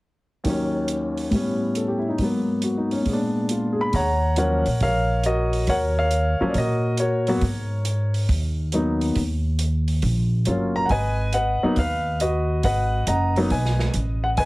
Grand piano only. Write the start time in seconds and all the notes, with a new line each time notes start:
0.44 D#2 D#3 F#3
0.49 C#4
1.31 A2 G3 B3
1.36 C#4
1.77 A4
1.88 G4
1.99 E4
2.09 D#4
2.18 G#2 F#3 A#3
2.23 B3
2.64 F#4
2.78 D#4
2.92 C#4
3.02 A#2 G#3
3.09 B3 D4
3.51 F4
3.73 G#4
3.81 B5
3.95 C#5 F#5 A#5
4.37 F3 F#3 A#3 C#4 A#4 C#5 F#5
4.83 A#4 C#5 F5
5.26 F#4 A#4 D#5
5.69 A#4 C#5 F#5
5.99 A#4 C#5 F5
6.41 F3 F#3 A#3 C#4
6.50 D5
6.58 F#4 A#4 D#5
7.00 F#4 A#4 C#5
7.28 F#3 A#3 B3 F#4
8.73 F#3 A#3 B3 D#4
10.47 F#3 A#3 C#4 F4
10.76 A#5
10.86 F#5
10.91 B4 D#5 G#5
11.34 B4 D#5 F#5
11.63 F#3 A#3 B3 D#4
11.79 B4 F5
12.21 F#4 B4 D#5
12.64 B4 D#5 F#5
13.08 D#5 F#5 A#5
13.37 F#3 A#3 B3 D#4
13.51 B4 D#5 G#5
14.24 F#5
14.38 B4 D#5 G#5